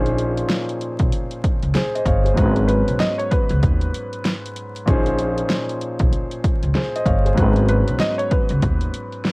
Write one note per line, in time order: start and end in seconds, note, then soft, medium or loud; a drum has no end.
0.00 0.42 A#1 loud
0.00 2.32 A#2 medium
0.00 2.33 F3 medium
0.00 2.34 C#4 medium
0.00 2.34 D#4 medium
0.00 1.73 G#4 medium
0.00 1.73 C5 medium
0.06 closed hi-hat soft
0.19 closed hi-hat medium
0.38 closed hi-hat medium
0.50 snare loud
0.50 closed hi-hat medium
0.69 closed hi-hat soft
0.81 closed hi-hat medium
0.99 1.11 B1 medium
0.99 kick medium
0.99 closed hi-hat medium
1.12 closed hi-hat medium
1.31 closed hi-hat soft
1.44 kick medium
1.44 closed hi-hat medium
1.63 1.73 C#2 medium
1.63 closed hi-hat soft
1.75 1.93 G#4 medium
1.75 1.93 C5 medium
1.75 snare loud
1.75 closed hi-hat loud
1.95 2.07 C5 medium
1.95 2.06 D#5 medium
1.95 closed hi-hat medium
2.06 2.33 G1 medium
2.06 2.24 C#5 medium
2.06 2.24 F5 medium
2.06 kick medium
2.06 closed hi-hat medium
2.24 2.55 G#4 medium
2.24 2.54 C5 medium
2.24 closed hi-hat soft
2.34 2.81 G#1 loud
2.34 4.82 G#2 medium
2.34 4.82 F#3 medium
2.34 4.83 B3 medium
2.34 kick loud
2.34 closed hi-hat medium
2.38 4.84 C#4 medium
2.38 4.85 B4 medium
2.56 closed hi-hat soft
2.68 2.96 B4 medium
2.68 closed hi-hat medium
2.88 2.98 B1 medium
2.88 closed hi-hat medium
2.99 3.17 D#5 medium
2.99 snare loud
2.99 closed hi-hat medium
3.18 3.30 C#5 medium
3.18 closed hi-hat soft
3.31 4.83 B4 medium
3.31 kick medium
3.31 closed hi-hat medium
3.49 3.61 C#2 medium
3.49 closed hi-hat medium
3.63 3.90 D#2 loud
3.63 kick medium
3.63 closed hi-hat medium
3.81 closed hi-hat medium
3.94 closed hi-hat medium
4.13 closed hi-hat soft
4.25 snare loud
4.25 closed hi-hat loud
4.46 closed hi-hat medium
4.56 closed hi-hat medium
4.76 closed hi-hat medium
4.86 5.42 A#1 loud
4.86 7.33 A#2 medium
4.86 7.33 F3 medium
4.86 7.34 C#4 medium
4.86 7.34 D#4 medium
4.86 kick loud
4.86 closed hi-hat medium
4.90 6.73 G#4 medium
4.90 6.73 C5 medium
5.06 closed hi-hat soft
5.19 closed hi-hat medium
5.38 closed hi-hat medium
5.50 snare loud
5.50 closed hi-hat medium
5.69 closed hi-hat soft
5.81 closed hi-hat medium
5.99 6.11 B1 medium
5.99 kick medium
5.99 closed hi-hat medium
6.13 closed hi-hat medium
6.31 closed hi-hat medium
6.44 kick medium
6.44 closed hi-hat medium
6.63 6.74 C#2 medium
6.63 closed hi-hat soft
6.75 6.93 G#4 medium
6.75 6.93 C5 medium
6.75 snare loud
6.75 closed hi-hat loud
6.96 7.07 C5 medium
6.96 7.06 D#5 medium
6.96 closed hi-hat medium
7.06 7.33 G1 medium
7.06 7.24 C#5 medium
7.06 7.24 F5 medium
7.06 kick loud
7.06 closed hi-hat medium
7.25 7.55 G#4 medium
7.25 7.55 C5 medium
7.25 closed hi-hat medium
7.34 7.81 G#1 loud
7.34 9.32 G#2 medium
7.34 9.32 F#3 medium
7.34 9.32 B3 medium
7.34 kick loud
7.34 closed hi-hat medium
7.38 9.32 C#4 medium
7.38 9.32 B4 medium
7.56 closed hi-hat soft
7.69 7.97 B4 medium
7.69 closed hi-hat medium
7.88 7.99 B1 medium
7.88 closed hi-hat medium
8.00 8.17 D#5 medium
8.00 snare loud
8.00 closed hi-hat medium
8.18 8.29 C#5 medium
8.18 closed hi-hat soft
8.30 9.32 B4 medium
8.30 kick loud
8.30 closed hi-hat medium
8.49 8.61 C#2 loud
8.49 closed hi-hat medium
8.63 8.90 D#2 loud
8.63 kick medium
8.63 closed hi-hat medium
8.81 closed hi-hat medium
8.94 closed hi-hat medium
9.13 closed hi-hat soft
9.25 snare loud
9.25 closed hi-hat loud